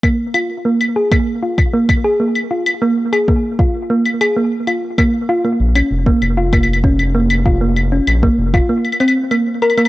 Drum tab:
CL |x-----------x-----------------x-----------x-----------------x-----------x-----------------x-----|------x-----------------x-----------------------------------x-----x-----------------x-----------|x-----------------------------x-----------------x-----------x---x---x---------x-----------x-----|------------x-----------x-----------------x-----------x--x--x--x--------x-----------x--x--x--x--|
BD |o-----------------------------------------o-----------------o-----------o-----------------------|------------------------------o-----------o-----------------------------------------------------|o-----------------------------------------o-----------------o-----------o-----------------------|o-----------------------------o-----------o-----------------------------------------------------|